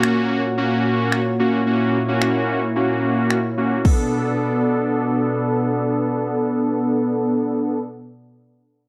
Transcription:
0, 0, Header, 1, 4, 480
1, 0, Start_track
1, 0, Key_signature, 2, "minor"
1, 0, Tempo, 545455
1, 1468, Time_signature, 4, 2, 24, 8
1, 7819, End_track
2, 0, Start_track
2, 0, Title_t, "Analog synth pad"
2, 0, Program_c, 0, 89
2, 0, Note_on_c, 0, 46, 72
2, 0, Note_on_c, 0, 58, 69
2, 0, Note_on_c, 0, 66, 69
2, 0, Note_on_c, 0, 73, 84
2, 1208, Note_off_c, 0, 66, 0
2, 1229, Note_on_c, 0, 64, 70
2, 3352, Note_off_c, 0, 58, 0
2, 3353, Note_off_c, 0, 46, 0
2, 3353, Note_off_c, 0, 73, 0
2, 3367, Note_off_c, 0, 64, 0
2, 3388, Note_on_c, 0, 47, 80
2, 3388, Note_on_c, 0, 59, 69
2, 3389, Note_on_c, 0, 69, 69
2, 3389, Note_on_c, 0, 74, 87
2, 6858, Note_off_c, 0, 47, 0
2, 6859, Note_off_c, 0, 59, 0
2, 6859, Note_off_c, 0, 69, 0
2, 6859, Note_off_c, 0, 74, 0
2, 7819, End_track
3, 0, Start_track
3, 0, Title_t, "Analog polysynth"
3, 0, Program_c, 1, 90
3, 0, Note_on_c, 1, 58, 94
3, 0, Note_on_c, 1, 61, 84
3, 0, Note_on_c, 1, 66, 104
3, 365, Note_off_c, 1, 58, 0
3, 366, Note_off_c, 1, 61, 0
3, 368, Note_off_c, 1, 66, 0
3, 506, Note_on_c, 1, 58, 89
3, 508, Note_on_c, 1, 61, 80
3, 510, Note_on_c, 1, 66, 99
3, 1054, Note_off_c, 1, 58, 0
3, 1055, Note_off_c, 1, 61, 0
3, 1056, Note_off_c, 1, 66, 0
3, 1226, Note_on_c, 1, 58, 86
3, 1228, Note_on_c, 1, 61, 80
3, 1230, Note_on_c, 1, 66, 97
3, 1411, Note_off_c, 1, 58, 0
3, 1413, Note_off_c, 1, 61, 0
3, 1414, Note_off_c, 1, 66, 0
3, 1466, Note_on_c, 1, 58, 84
3, 1468, Note_on_c, 1, 61, 77
3, 1470, Note_on_c, 1, 66, 93
3, 1740, Note_off_c, 1, 58, 0
3, 1741, Note_off_c, 1, 61, 0
3, 1742, Note_off_c, 1, 66, 0
3, 1833, Note_on_c, 1, 58, 91
3, 1835, Note_on_c, 1, 61, 85
3, 1838, Note_on_c, 1, 66, 104
3, 2285, Note_off_c, 1, 58, 0
3, 2286, Note_off_c, 1, 61, 0
3, 2288, Note_off_c, 1, 66, 0
3, 2426, Note_on_c, 1, 58, 92
3, 2428, Note_on_c, 1, 61, 79
3, 2431, Note_on_c, 1, 66, 100
3, 2974, Note_off_c, 1, 58, 0
3, 2975, Note_off_c, 1, 61, 0
3, 2976, Note_off_c, 1, 66, 0
3, 3146, Note_on_c, 1, 58, 88
3, 3148, Note_on_c, 1, 61, 80
3, 3150, Note_on_c, 1, 66, 94
3, 3332, Note_off_c, 1, 58, 0
3, 3333, Note_off_c, 1, 61, 0
3, 3334, Note_off_c, 1, 66, 0
3, 3388, Note_on_c, 1, 59, 79
3, 3388, Note_on_c, 1, 62, 74
3, 3388, Note_on_c, 1, 69, 91
3, 6858, Note_off_c, 1, 59, 0
3, 6858, Note_off_c, 1, 62, 0
3, 6858, Note_off_c, 1, 69, 0
3, 7819, End_track
4, 0, Start_track
4, 0, Title_t, "Drums"
4, 30, Note_on_c, 9, 26, 100
4, 118, Note_off_c, 9, 26, 0
4, 989, Note_on_c, 9, 26, 100
4, 1077, Note_off_c, 9, 26, 0
4, 1950, Note_on_c, 9, 26, 94
4, 2038, Note_off_c, 9, 26, 0
4, 2908, Note_on_c, 9, 26, 97
4, 2996, Note_off_c, 9, 26, 0
4, 3387, Note_on_c, 9, 36, 96
4, 3387, Note_on_c, 9, 49, 79
4, 3475, Note_off_c, 9, 36, 0
4, 3475, Note_off_c, 9, 49, 0
4, 7819, End_track
0, 0, End_of_file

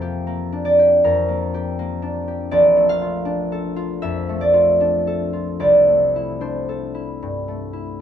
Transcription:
0, 0, Header, 1, 2, 480
1, 0, Start_track
1, 0, Tempo, 751880
1, 1613, Time_signature, 4, 2, 24, 8
1, 2580, Tempo, 795756
1, 4975, End_track
2, 0, Start_track
2, 0, Title_t, "Harp"
2, 0, Program_c, 0, 46
2, 0, Note_on_c, 0, 41, 46
2, 0, Note_on_c, 0, 57, 35
2, 0, Note_on_c, 0, 58, 34
2, 0, Note_on_c, 0, 69, 38
2, 0, Note_on_c, 0, 77, 66
2, 10, Note_on_c, 0, 67, 37
2, 164, Note_off_c, 0, 58, 0
2, 171, Note_on_c, 0, 58, 40
2, 335, Note_on_c, 0, 62, 37
2, 414, Note_on_c, 0, 74, 59
2, 497, Note_off_c, 0, 67, 0
2, 504, Note_on_c, 0, 67, 39
2, 658, Note_off_c, 0, 41, 0
2, 664, Note_on_c, 0, 41, 41
2, 667, Note_on_c, 0, 70, 53
2, 813, Note_off_c, 0, 58, 0
2, 821, Note_on_c, 0, 58, 39
2, 977, Note_off_c, 0, 67, 0
2, 984, Note_on_c, 0, 67, 44
2, 1135, Note_off_c, 0, 58, 0
2, 1142, Note_on_c, 0, 58, 40
2, 1283, Note_off_c, 0, 62, 0
2, 1291, Note_on_c, 0, 62, 44
2, 1362, Note_off_c, 0, 57, 0
2, 1446, Note_off_c, 0, 67, 0
2, 1454, Note_on_c, 0, 67, 38
2, 1597, Note_off_c, 0, 74, 0
2, 1605, Note_on_c, 0, 74, 70
2, 1608, Note_on_c, 0, 34, 55
2, 1630, Note_off_c, 0, 41, 0
2, 1630, Note_off_c, 0, 67, 0
2, 1766, Note_on_c, 0, 57, 44
2, 1839, Note_off_c, 0, 77, 0
2, 1846, Note_on_c, 0, 77, 73
2, 1849, Note_off_c, 0, 69, 0
2, 1926, Note_on_c, 0, 65, 43
2, 2068, Note_off_c, 0, 62, 0
2, 2076, Note_on_c, 0, 62, 50
2, 2247, Note_on_c, 0, 69, 45
2, 2395, Note_off_c, 0, 65, 0
2, 2402, Note_on_c, 0, 65, 43
2, 2566, Note_on_c, 0, 76, 69
2, 2571, Note_on_c, 0, 41, 43
2, 2723, Note_off_c, 0, 57, 0
2, 2730, Note_on_c, 0, 57, 41
2, 2795, Note_off_c, 0, 74, 0
2, 2802, Note_on_c, 0, 74, 64
2, 2870, Note_off_c, 0, 65, 0
2, 2877, Note_on_c, 0, 65, 43
2, 2972, Note_off_c, 0, 76, 0
2, 3034, Note_off_c, 0, 62, 0
2, 3041, Note_on_c, 0, 62, 40
2, 3125, Note_off_c, 0, 70, 0
2, 3194, Note_off_c, 0, 69, 0
2, 3202, Note_on_c, 0, 69, 42
2, 3350, Note_off_c, 0, 65, 0
2, 3358, Note_on_c, 0, 65, 34
2, 3512, Note_off_c, 0, 74, 0
2, 3518, Note_on_c, 0, 36, 41
2, 3521, Note_on_c, 0, 74, 62
2, 3547, Note_off_c, 0, 65, 0
2, 3549, Note_off_c, 0, 41, 0
2, 3551, Note_off_c, 0, 34, 0
2, 3551, Note_off_c, 0, 77, 0
2, 3574, Note_off_c, 0, 58, 0
2, 3678, Note_off_c, 0, 57, 0
2, 3685, Note_on_c, 0, 57, 32
2, 3857, Note_on_c, 0, 64, 35
2, 4001, Note_off_c, 0, 62, 0
2, 4007, Note_on_c, 0, 62, 36
2, 4010, Note_on_c, 0, 72, 42
2, 4169, Note_off_c, 0, 69, 0
2, 4176, Note_on_c, 0, 69, 34
2, 4324, Note_off_c, 0, 64, 0
2, 4332, Note_on_c, 0, 64, 32
2, 4500, Note_on_c, 0, 43, 33
2, 4647, Note_off_c, 0, 57, 0
2, 4655, Note_on_c, 0, 57, 31
2, 4799, Note_off_c, 0, 64, 0
2, 4806, Note_on_c, 0, 64, 30
2, 4959, Note_off_c, 0, 62, 0
2, 4975, Note_off_c, 0, 36, 0
2, 4975, Note_off_c, 0, 43, 0
2, 4975, Note_off_c, 0, 57, 0
2, 4975, Note_off_c, 0, 64, 0
2, 4975, Note_off_c, 0, 69, 0
2, 4975, Note_off_c, 0, 72, 0
2, 4975, Note_off_c, 0, 74, 0
2, 4975, End_track
0, 0, End_of_file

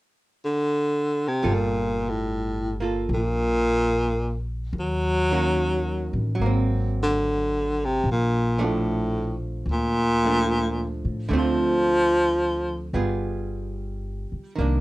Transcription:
0, 0, Header, 1, 5, 480
1, 0, Start_track
1, 0, Key_signature, -2, "minor"
1, 0, Tempo, 821918
1, 842, Time_signature, 4, 2, 24, 8
1, 8647, End_track
2, 0, Start_track
2, 0, Title_t, "Hollow-body jazz guitar"
2, 0, Program_c, 0, 26
2, 833, Note_on_c, 0, 55, 40
2, 840, Note_on_c, 0, 65, 43
2, 842, Note_on_c, 0, 69, 48
2, 1638, Note_on_c, 0, 58, 30
2, 1640, Note_off_c, 0, 65, 0
2, 1647, Note_on_c, 0, 65, 33
2, 1648, Note_off_c, 0, 69, 0
2, 1655, Note_on_c, 0, 69, 32
2, 2761, Note_off_c, 0, 55, 0
2, 2762, Note_off_c, 0, 58, 0
2, 2766, Note_off_c, 0, 65, 0
2, 2771, Note_off_c, 0, 69, 0
2, 3101, Note_on_c, 0, 51, 35
2, 3105, Note_on_c, 0, 58, 37
2, 3108, Note_on_c, 0, 61, 40
2, 3109, Note_on_c, 0, 66, 44
2, 3706, Note_off_c, 0, 51, 0
2, 3708, Note_on_c, 0, 54, 44
2, 3731, Note_off_c, 0, 58, 0
2, 3733, Note_off_c, 0, 61, 0
2, 3733, Note_off_c, 0, 66, 0
2, 3746, Note_on_c, 0, 58, 45
2, 3772, Note_on_c, 0, 60, 47
2, 4675, Note_off_c, 0, 54, 0
2, 4694, Note_off_c, 0, 58, 0
2, 4706, Note_off_c, 0, 60, 0
2, 5013, Note_on_c, 0, 53, 39
2, 5017, Note_on_c, 0, 57, 41
2, 5025, Note_on_c, 0, 62, 44
2, 5972, Note_off_c, 0, 53, 0
2, 5979, Note_on_c, 0, 53, 32
2, 5982, Note_off_c, 0, 57, 0
2, 5987, Note_off_c, 0, 62, 0
2, 5989, Note_on_c, 0, 57, 36
2, 5994, Note_on_c, 0, 62, 36
2, 6591, Note_on_c, 0, 50, 46
2, 6596, Note_off_c, 0, 57, 0
2, 6601, Note_off_c, 0, 53, 0
2, 6603, Note_on_c, 0, 57, 49
2, 6611, Note_off_c, 0, 62, 0
2, 6618, Note_on_c, 0, 60, 54
2, 6625, Note_on_c, 0, 65, 47
2, 7554, Note_off_c, 0, 50, 0
2, 7554, Note_off_c, 0, 57, 0
2, 7556, Note_off_c, 0, 60, 0
2, 7556, Note_on_c, 0, 55, 31
2, 7557, Note_off_c, 0, 65, 0
2, 7558, Note_on_c, 0, 59, 34
2, 7564, Note_on_c, 0, 65, 36
2, 7565, Note_on_c, 0, 68, 38
2, 8498, Note_off_c, 0, 55, 0
2, 8500, Note_on_c, 0, 51, 36
2, 8515, Note_off_c, 0, 59, 0
2, 8518, Note_on_c, 0, 58, 38
2, 8522, Note_off_c, 0, 65, 0
2, 8522, Note_off_c, 0, 68, 0
2, 8529, Note_on_c, 0, 62, 43
2, 8647, Note_off_c, 0, 51, 0
2, 8647, Note_off_c, 0, 58, 0
2, 8647, Note_off_c, 0, 62, 0
2, 8647, End_track
3, 0, Start_track
3, 0, Title_t, "Baritone saxophone"
3, 0, Program_c, 1, 67
3, 261, Note_on_c, 1, 50, 77
3, 747, Note_on_c, 1, 48, 68
3, 755, Note_off_c, 1, 50, 0
3, 898, Note_on_c, 1, 46, 70
3, 906, Note_off_c, 1, 48, 0
3, 1221, Note_on_c, 1, 45, 57
3, 1229, Note_off_c, 1, 46, 0
3, 1677, Note_off_c, 1, 45, 0
3, 1832, Note_on_c, 1, 46, 90
3, 2604, Note_off_c, 1, 46, 0
3, 2799, Note_on_c, 1, 54, 85
3, 3719, Note_off_c, 1, 54, 0
3, 4104, Note_on_c, 1, 50, 79
3, 4582, Note_on_c, 1, 48, 75
3, 4591, Note_off_c, 1, 50, 0
3, 4708, Note_off_c, 1, 48, 0
3, 4737, Note_on_c, 1, 46, 72
3, 5046, Note_on_c, 1, 45, 60
3, 5055, Note_off_c, 1, 46, 0
3, 5507, Note_off_c, 1, 45, 0
3, 5673, Note_on_c, 1, 46, 95
3, 6440, Note_off_c, 1, 46, 0
3, 6645, Note_on_c, 1, 53, 96
3, 7557, Note_off_c, 1, 53, 0
3, 8647, End_track
4, 0, Start_track
4, 0, Title_t, "Upright bass"
4, 0, Program_c, 2, 32
4, 843, Note_on_c, 2, 31, 58
4, 1781, Note_off_c, 2, 31, 0
4, 1804, Note_on_c, 2, 34, 61
4, 2742, Note_off_c, 2, 34, 0
4, 2761, Note_on_c, 2, 39, 67
4, 3549, Note_off_c, 2, 39, 0
4, 3581, Note_on_c, 2, 33, 57
4, 3718, Note_off_c, 2, 33, 0
4, 3736, Note_on_c, 2, 32, 58
4, 4665, Note_off_c, 2, 32, 0
4, 4694, Note_on_c, 2, 34, 63
4, 5623, Note_off_c, 2, 34, 0
4, 5639, Note_on_c, 2, 38, 56
4, 6423, Note_off_c, 2, 38, 0
4, 6451, Note_on_c, 2, 45, 52
4, 6590, Note_off_c, 2, 45, 0
4, 6598, Note_on_c, 2, 38, 58
4, 7534, Note_off_c, 2, 38, 0
4, 7553, Note_on_c, 2, 31, 56
4, 8342, Note_off_c, 2, 31, 0
4, 8517, Note_on_c, 2, 36, 59
4, 8647, Note_off_c, 2, 36, 0
4, 8647, End_track
5, 0, Start_track
5, 0, Title_t, "Muted upright bass strokes"
5, 8362, Note_on_c, 9, 29, 28
5, 8421, Note_off_c, 9, 29, 0
5, 8647, End_track
0, 0, End_of_file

